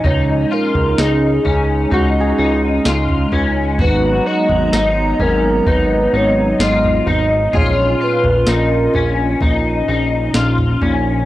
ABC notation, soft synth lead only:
X:1
M:4/4
L:1/8
Q:1/4=64
K:Dbmix
V:1 name="Soft synth lead"
d B A2 z4 | c e2 B c d e2 | d c B2 z4 |]